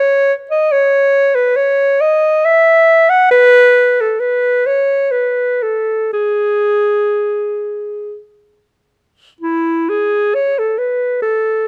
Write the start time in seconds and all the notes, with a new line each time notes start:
Already playing: C#5
0.50 D#5
0.72 C#5
1.35 B4
1.56 C#5
2.01 D#5
2.45 E5
3.09 F#5
3.31 B4
4.01 A4
4.20 B4
4.66 C#5
5.11 B4
5.62 A4
6.13 G#4
9.41 E4
9.89 G#4
10.35 C#5
10.59 A4
10.78 B4
11.22 A4